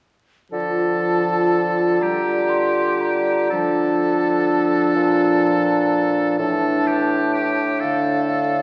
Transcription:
0.52 4.92 D3 soft
0.52 1.98 F3 soft
0.52 3.47 F4 soft
0.52 2.04 A4 soft
0.52 2.02 A5 soft
2.01 3.54 G3 soft
2.01 3.49 G4 soft
2.01 2.51 A#5 soft
2.49 3.03 C6 soft
3.01 3.53 A#5 soft
3.50 6.39 F3 soft
3.50 6.35 D4 soft
3.50 6.34 A4 soft
3.50 6.38 A5 soft
4.96 6.36 A#2 soft
6.38 8.62 A2 soft
6.38 7.53 E3 soft
6.38 8.62 D4 soft
6.38 6.88 A4 soft
6.38 7.52 A5 soft
6.87 7.33 G4 soft
7.34 7.81 G4 soft
7.80 8.62 D3 soft
7.80 8.62 A4 soft
7.80 8.25 F5 soft
8.26 8.62 F5 soft

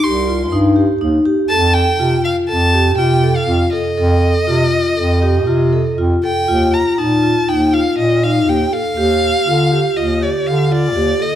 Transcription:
0.03 0.54 C2 medium
0.03 0.25 G4 medium
0.03 0.52 C6 medium
0.28 0.50 F4 medium
0.52 0.89 G2 loud
0.52 0.74 D#4 medium
0.76 0.98 G4 medium
1.01 1.20 D#2 medium
1.01 1.23 D#4 medium
1.25 1.48 G4 medium
1.49 1.87 F2 medium
1.49 1.94 A4 medium
1.49 1.75 A5 loud
1.74 2.24 G5 loud
1.99 2.18 C3 medium
1.99 2.44 F4 medium
2.25 2.36 F5 medium
2.48 2.99 F2 medium
2.48 2.71 A4 medium
2.48 2.94 A5 loud
2.74 2.96 G4 medium
2.98 3.35 C3 loud
2.98 3.20 F4 medium
2.98 3.37 G5 medium
3.23 3.45 A4 medium
3.36 3.73 F5 medium
3.47 3.66 F2 medium
3.47 3.70 F4 medium
3.73 3.95 A4 medium
3.73 5.94 D#5 medium
3.98 4.35 F2 loud
3.98 4.42 A4 loud
4.47 4.66 C3 medium
4.47 4.92 F4 medium
4.97 5.49 F2 medium
4.97 5.19 A4 medium
5.22 5.45 G4 medium
5.47 5.85 C3 loud
5.47 5.70 F4 medium
5.73 5.95 A4 medium
5.97 6.16 F2 medium
5.97 6.21 F4 medium
6.24 6.46 A4 medium
6.24 6.75 G5 medium
6.48 6.86 D#2 medium
6.48 6.93 F4 medium
6.74 6.91 A#5 medium
6.91 7.00 A#5 medium
6.98 7.36 A#2 medium
6.98 7.21 D#4 medium
6.98 7.50 A5 medium
7.23 7.46 F4 medium
7.48 7.86 D#2 medium
7.48 7.71 D#4 medium
7.48 7.75 G5 medium
7.73 8.18 F4 medium
7.73 7.98 F5 medium
7.98 8.49 A#2 medium
7.98 8.25 D#5 medium
8.23 8.45 D#4 medium
8.23 8.50 F5 medium
8.48 8.66 D#2 medium
8.48 8.70 G4 medium
8.48 8.75 G5 medium
8.72 8.95 A4 medium
8.72 9.98 F5 loud
8.97 9.35 D#2 medium
8.97 9.42 G4 medium
9.47 9.85 D3 medium
9.47 9.69 F4 medium
9.72 9.94 G4 medium
9.96 10.33 D#2 medium
9.96 10.19 F4 medium
9.96 10.24 D#5 medium
10.21 10.66 G4 medium
10.21 10.48 D5 medium
10.46 10.97 D3 medium
10.46 10.74 F5 medium
10.71 10.93 F4 medium
10.71 11.23 D5 medium
10.95 11.14 D#2 medium
10.95 11.17 G4 medium
11.20 11.35 A4 medium
11.20 11.35 D#5 medium

